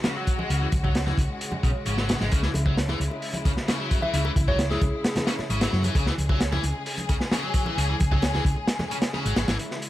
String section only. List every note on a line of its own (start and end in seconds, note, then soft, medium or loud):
0.00 9.55 C#3 medium
0.00 9.55 G#3 medium
0.00 2.30 F#4 medium
2.32 5.94 E4 medium
5.95 9.58 G#4 medium
9.59 9.89 C#3 medium
9.59 9.89 G#3 medium
9.59 9.89 E4 medium